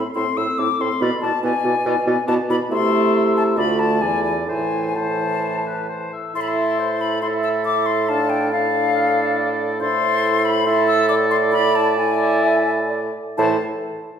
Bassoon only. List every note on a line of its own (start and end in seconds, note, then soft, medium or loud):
0.16 0.26 A2 medium
0.37 0.47 A2 medium
0.59 0.68 A2 medium
0.80 0.90 A2 medium
1.02 1.11 B2 loud
1.23 1.32 B2 medium
1.44 1.53 B2 medium
1.65 1.74 B2 medium
1.86 1.95 B2 loud
2.07 2.16 B2 loud
2.28 2.38 B2 loud
2.49 2.59 B2 medium
2.72 3.60 C3 loud
3.58 4.02 D2 loud
4.02 4.50 E2 medium
4.48 6.12 A2 medium
6.36 9.77 A2 medium
9.81 13.10 A2 loud
13.38 13.58 A2 loud